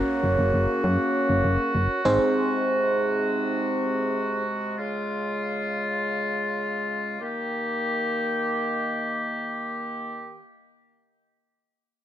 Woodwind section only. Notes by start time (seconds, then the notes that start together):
Already playing: C#3 A#3 F#4
2.05 C3 G#3
4.78 C#3 F4
7.20 D#3 A#3 G4